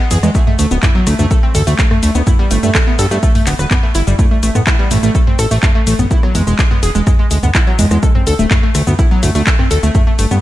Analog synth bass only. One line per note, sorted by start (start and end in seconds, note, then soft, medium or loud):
0.11 0.19 E2 medium
0.23 0.30 E2 medium
0.59 0.67 D2 medium
0.71 0.79 D1 medium
1.07 1.15 D2 loud
1.19 1.26 D2 medium
1.55 1.63 D2 loud
1.67 1.75 D2 medium
2.03 2.11 D2 medium
2.15 2.23 D2 medium
2.51 2.59 G1 medium
2.63 2.71 G2 medium
2.99 3.07 G2 loud
3.11 3.19 G2 medium
3.47 3.55 D1 loud
3.59 3.67 D1 medium
3.95 4.03 G1 medium
4.07 4.15 G1 medium
4.43 4.51 A1 loud
4.55 4.63 A2 medium
4.91 4.99 A1 loud
5.03 5.11 A1 medium
5.39 5.47 A1 loud
5.51 5.59 A1 medium
5.87 5.95 A1 loud
5.99 6.06 A1 medium
6.35 6.43 E2 loud
6.47 6.54 E1 medium
6.83 6.91 E1 medium
6.95 7.02 E1 medium
7.31 7.39 D2 medium
7.43 7.50 D2 medium
7.79 7.87 E2 medium
7.91 7.98 E2 medium
8.27 8.35 D2 medium
8.39 8.47 D1 medium
8.75 8.83 D2 loud
8.87 8.95 D2 medium
9.23 9.31 D2 medium
9.35 9.43 D2 medium
9.71 9.79 D2 loud
9.83 9.91 D2 medium
10.19 10.27 G1 medium
10.31 10.39 G2 medium